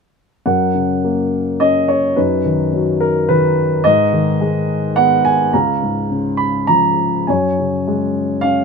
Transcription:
0.46 2.13 F#2 soft
0.46 1.58 A#4 soft
0.46 1.57 F#5 medium
0.75 1.86 C#3 soft
1.04 2.14 A#3 soft
1.60 2.16 C#4 soft
1.60 1.90 D#5 medium
1.88 2.15 C#5 medium
2.16 3.81 F#2 soft
2.16 2.97 D#4 soft
2.16 2.69 B4 medium
2.45 3.28 D#3 soft
2.73 3.82 F#3 soft
3.00 3.27 A#4 medium
3.29 3.83 D#3 soft
3.29 3.68 B4 medium
3.84 5.50 G#2 medium
3.84 4.93 B4 soft
3.84 5.00 D#5 medium
4.13 5.22 D#3 soft
4.41 5.51 G#3 soft
4.96 5.52 B3 soft
4.96 5.26 F#5 medium
5.25 5.54 G#5 medium
5.53 7.24 C#2 soft
5.53 6.37 F5 soft
5.53 6.07 A#5 medium
5.82 6.95 G#2 soft
6.11 7.24 C#3 soft
6.37 6.66 B5 medium
6.67 7.26 F3 soft
6.67 7.09 A#5 medium
7.27 8.64 F#2 soft
7.27 8.40 C#5 soft
7.27 8.39 G#5 medium
7.59 8.64 C#3 soft
7.88 8.64 G#3 soft
8.41 8.64 C#4 soft
8.41 8.64 F5 medium

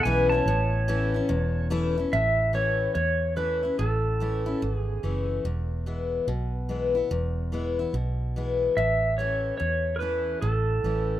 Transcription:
0.00 0.44 B2 loud
0.00 0.29 G#5 loud
0.05 0.41 B1 medium
0.05 0.31 E3 medium
0.05 0.31 G#3 medium
0.05 0.32 C#4 medium
0.05 0.31 E4 medium
0.05 0.31 B4 medium
0.29 0.47 E4 medium
0.29 1.67 C#5 medium
0.29 1.66 A5 loud
0.34 0.48 C#4 soft
0.46 1.21 A1 medium
0.46 1.27 A2 medium
0.88 1.14 E3 medium
0.88 1.14 A3 medium
0.88 1.14 C#4 medium
0.88 1.13 E4 medium
1.14 1.30 C#4 medium
1.14 1.29 E4 medium
1.29 2.04 E1 medium
1.29 2.09 E2 medium
1.70 1.96 E3 medium
1.70 1.97 A3 medium
1.70 1.97 C#4 medium
1.70 1.96 E4 medium
1.97 2.13 C#4 soft
1.97 2.12 E4 medium
2.13 2.87 A1 medium
2.13 2.93 A2 medium
2.13 2.56 E5 medium
2.53 2.94 E3 soft
2.53 2.94 A3 medium
2.53 2.95 C#4 soft
2.53 2.95 E4 soft
2.53 2.93 C#5 medium
2.95 3.76 E2 medium
2.95 3.70 E2 medium
2.95 3.34 C#5 medium
3.36 3.62 E3 soft
3.36 3.63 A3 medium
3.36 3.63 C#4 medium
3.36 3.62 E4 soft
3.36 3.76 B4 medium
3.63 3.79 C#4 soft
3.63 3.78 E4 soft
3.79 4.53 A1 medium
3.79 4.59 A2 medium
3.79 4.74 A4 medium
4.20 4.46 E3 soft
4.20 4.46 A3 medium
4.20 4.46 C#4 medium
4.20 4.45 E4 medium
4.46 4.62 C#4 soft
4.46 4.61 E4 medium
4.62 4.98 G#1 medium
4.62 5.42 E2 medium
4.74 5.26 G#4 medium
5.03 5.39 F#1 medium
5.03 5.43 E3 soft
5.03 5.44 A3 soft
5.03 5.44 C#4 medium
5.03 5.44 E4 medium
5.44 6.19 E1 medium
5.44 6.25 E2 medium
5.86 6.26 E3 soft
5.86 6.27 G#3 soft
5.86 6.27 B3 medium
5.86 6.27 E4 medium
6.27 7.02 B1 medium
6.27 7.08 B2 medium
6.69 6.95 E3 soft
6.69 6.95 G#3 soft
6.69 6.95 B3 soft
6.69 6.93 E4 soft
6.95 7.11 B3 soft
6.95 7.10 E4 medium
7.11 7.85 E1 medium
7.11 7.91 E2 medium
7.52 7.78 E3 soft
7.52 7.78 G#3 medium
7.52 7.78 B3 medium
7.52 7.78 E4 medium
7.79 7.95 B3 soft
7.79 7.94 E4 medium
7.93 8.68 B1 medium
7.93 8.74 B2 medium
8.36 8.76 E3 soft
8.36 8.76 G#3 soft
8.36 8.77 B3 medium
8.36 8.77 E4 medium
8.77 9.51 A1 medium
8.77 9.57 A2 medium
8.77 9.20 E5 medium
9.18 9.59 E3 soft
9.18 9.59 A3 soft
9.18 9.59 C#4 medium
9.18 9.59 E4 medium
9.18 9.56 C#5 medium
9.58 10.40 E2 medium
9.58 10.35 E2 medium
9.58 9.96 C#5 medium
9.96 9.99 A#4 medium
9.96 10.41 B4 medium
10.00 10.41 E3 soft
10.00 10.41 A3 soft
10.00 10.42 C#4 medium
10.00 10.42 E4 soft
10.41 10.80 A1 medium
10.41 11.20 A2 medium
10.41 11.20 A4 medium
10.84 11.19 A1 medium
10.84 11.20 E3 soft
10.84 11.20 A3 soft
10.84 11.20 C#4 medium
10.84 11.20 E4 medium

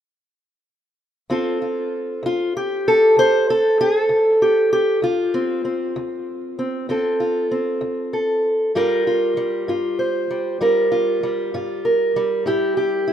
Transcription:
1.30 1.86 D2 medium
1.30 4.99 C4 soft
1.30 1.61 F4 soft
1.30 2.87 A4 soft
1.62 2.25 F4 soft
2.23 2.79 D2 medium
2.23 2.56 F4 medium
2.57 3.49 G4 medium
2.88 3.18 A4 medium
3.17 3.72 D2 medium
3.17 3.49 C5 medium
3.50 3.79 A4 medium
3.81 4.01 G#4 medium
4.01 5.04 A4 medium
4.09 4.65 D2 medium
4.42 4.71 G4 medium
4.73 5.03 G4 medium
5.02 5.58 D2 medium
5.02 6.89 F4 medium
5.34 5.64 C4 soft
5.65 6.58 C4 soft
5.96 6.52 D2 medium
6.59 6.88 C4 soft
6.89 7.44 D2 medium
6.89 7.50 C4 soft
6.89 7.19 F4 soft
6.89 8.12 A4 soft
7.20 8.71 F4 soft
7.51 8.71 C4 soft
7.81 8.37 D2 medium
8.13 8.71 A4 soft
8.75 9.30 G2 medium
8.75 9.37 G3 medium
8.75 9.06 F4 medium
8.75 9.99 A#4 medium
9.07 9.68 F4 soft
9.37 10.30 G3 medium
9.68 10.23 G2 medium
9.68 10.60 F4 medium
9.99 10.60 C5 soft
10.31 10.61 G3 soft
10.61 11.16 G2 medium
10.61 11.22 G3 medium
10.61 10.90 F4 soft
10.61 11.84 A#4 medium
10.92 11.53 F4 medium
11.23 12.15 G3 medium
11.54 12.09 G2 medium
11.54 12.42 F4 medium
11.85 12.42 A#4 soft
12.16 13.13 G3 medium
12.46 13.01 A2 medium
12.46 13.06 E4 medium
12.46 12.76 G4 medium
12.77 13.13 G4 medium
13.08 13.13 E4 soft

